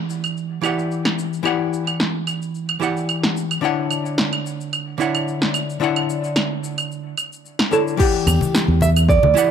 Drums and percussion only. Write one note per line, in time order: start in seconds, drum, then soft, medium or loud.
0.10 shaker medium
0.24 claves medium
0.24 shaker soft
0.37 shaker soft
0.64 claves medium
0.64 shaker medium
0.79 shaker soft
0.91 shaker soft
1.05 snare medium
1.05 claves medium
1.19 shaker medium
1.33 shaker soft
1.45 claves medium
1.45 shaker soft
1.73 shaker medium
1.87 claves medium
1.87 shaker soft
2.00 snare medium
2.00 shaker soft
2.27 claves medium
2.27 shaker medium
2.42 shaker soft
2.55 shaker soft
2.69 claves medium
2.82 shaker medium
2.97 shaker soft
3.09 claves medium
3.09 shaker soft
3.24 snare medium
3.37 shaker medium
3.51 claves medium
3.51 shaker soft
3.64 shaker soft
3.91 claves medium
3.91 shaker medium
4.06 shaker soft
4.18 snare medium
4.18 shaker soft
4.33 claves medium
4.46 shaker medium
4.61 shaker soft
4.73 claves medium
4.73 shaker soft
5.01 shaker medium
5.15 claves medium
5.15 shaker soft
5.28 shaker soft
5.42 snare medium
5.54 claves medium
5.54 shaker medium
5.70 shaker soft
5.82 shaker soft
5.96 claves medium
6.10 shaker medium
6.24 shaker soft
6.36 snare medium
6.36 claves medium
6.36 shaker soft
6.64 shaker medium
6.78 claves medium
6.78 shaker soft
6.92 shaker soft
7.17 claves medium
7.17 shaker medium
7.33 shaker soft
7.46 shaker soft
7.59 snare medium
7.59 claves medium
7.73 shaker medium
7.88 shaker soft
7.99 kick loud
7.99 crash loud
7.99 shaker soft
8.27 low conga medium
8.27 claves medium
8.27 shaker medium
8.41 high conga medium
8.41 shaker soft
8.55 snare medium
8.55 shaker soft
8.81 high conga medium
8.81 shaker medium
8.96 claves medium
8.96 shaker soft
9.09 kick loud
9.09 shaker soft
9.23 high conga medium
9.37 shaker medium